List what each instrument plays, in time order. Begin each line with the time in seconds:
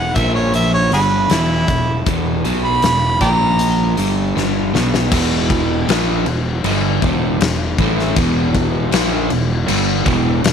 Already playing: fingered electric bass E1, harmonica F#5
0.15 fingered electric bass A#1, overdriven electric guitar A#2 F3 A#3, harmonica E5, kick, closed hi-hat
0.35 harmonica C#5
0.54 harmonica E5, closed hi-hat
0.74 harmonica C#5
0.91 fingered electric bass G1, overdriven electric guitar G2 D3 G3, harmonica F#4 G#4 B4, closed hi-hat
1.30 fingered electric bass E1, overdriven electric guitar E2 B2 E3, harmonica E4, snare, closed hi-hat
1.68 fingered electric bass E1, overdriven electric guitar E2 B2, kick, closed hi-hat
2.06 fingered electric bass E1, overdriven electric guitar E2 B2 E3, kick, closed hi-hat
2.44 fingered electric bass B1, overdriven electric guitar B2 F#3 B3, closed hi-hat
2.64 harmonica B5
2.82 fingered electric bass E1, overdriven electric guitar E2 B2, snare, closed hi-hat
3.21 fingered electric bass A#1, overdriven electric guitar A#2 F3 A#3, harmonica D5 G5 A#5, kick, closed hi-hat
3.59 closed hi-hat
3.97 fingered electric bass G1, overdriven electric guitar G2 D3 G3, closed hi-hat
4.35 fingered electric bass G1, overdriven electric guitar G2 D3 G3, snare
4.74 fingered electric bass B1, overdriven electric guitar B2 F#3 B3, snare
4.94 snare
5.11 fingered electric bass E1, overdriven electric guitar E2 B2 E3, kick, crash
5.50 kick, crash
5.88 fingered electric bass A#1, overdriven electric guitar A#2 F3 A#3, snare, crash
6.26 fingered electric bass E1, overdriven electric guitar E2 B2, crash
6.64 fingered electric bass G1, overdriven electric guitar G2 D3 G3, crash
7.02 fingered electric bass E1, overdriven electric guitar E2 B2 E3, kick, crash
7.40 fingered electric bass E1, overdriven electric guitar E2 B2, snare, crash
7.78 fingered electric bass A1, overdriven electric guitar A2 E3 A3, kick, crash
7.99 snare
8.16 fingered electric bass E1, overdriven electric guitar E2 B2 E3, kick, crash
8.55 kick, crash
8.92 fingered electric bass A#1, overdriven electric guitar A#2 F3 A#3, snare, crash
9.30 fingered electric bass E1, overdriven electric guitar E2 B2, crash
9.68 fingered electric bass G1, overdriven electric guitar G2 D3 G3, crash
10.05 fingered electric bass E1, overdriven electric guitar E2 B2 E3, kick, crash
10.43 fingered electric bass E1, overdriven electric guitar E2 B2, snare, crash